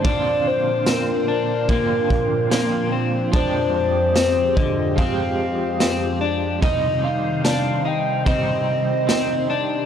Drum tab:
RD |x-x-x-x-|x-x-x-x-|x-x-x-x-|
TB |--x---x-|--x---x-|--x---x-|
SD |--o---o-|--o---o-|--o---o-|
BD |o---oo--|o--oo---|o---o---|